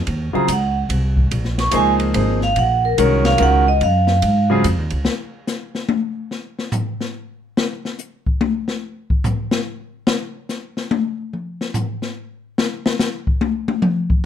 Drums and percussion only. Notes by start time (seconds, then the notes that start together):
0.07 ride
0.48 hi-hat pedal, ride
0.90 ride
1.17 kick
1.31 ride
1.45 snare
1.58 snare, ride
1.71 hi-hat pedal, ride
2.00 ride
2.14 ride
2.41 snare
2.56 ride
2.98 hi-hat pedal, ride
3.25 snare, ride
3.38 ride
3.81 ride
4.07 snare
4.22 ride
4.64 hi-hat pedal, ride
4.90 ride
5.05 snare
5.47 snare, hi-hat pedal
5.75 snare
5.89 high tom
6.31 snare
6.59 snare
6.72 floor tom, hi-hat pedal
7.01 snare
7.57 snare
7.85 snare
7.99 hi-hat pedal
8.27 kick
8.41 high tom
8.68 snare
9.10 kick
9.24 floor tom, hi-hat pedal
9.51 snare
10.07 snare
10.49 snare, hi-hat pedal
10.77 snare
10.91 high tom
11.33 mid tom
11.61 snare
11.74 floor tom, hi-hat pedal
12.02 snare
12.58 snare
12.86 snare
12.99 snare, hi-hat pedal
13.27 kick
13.41 high tom
13.68 high tom
13.82 mid tom
14.10 kick